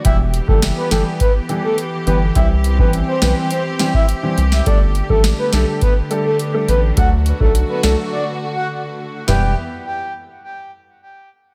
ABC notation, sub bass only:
X:1
M:4/4
L:1/16
Q:1/4=104
K:Em
V:1 name="Sub bass" clef=bass
E,,,3 F,,,2 z G,,, z6 z G,,,2 | C,,3 A,,,2 z B,,, z6 z C,,2 | G,,,3 A,,,2 z B,,, z6 z A,,,2 | D,,3 B,,,2 z C,, z8 z |
E,,,2 z12 z2 |]